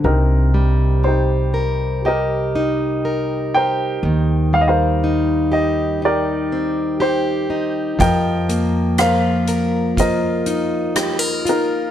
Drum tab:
HH |--------|--------|xxxxxxxx|
SD |--------|--------|--r---r-|
BD |--------|--------|o---o---|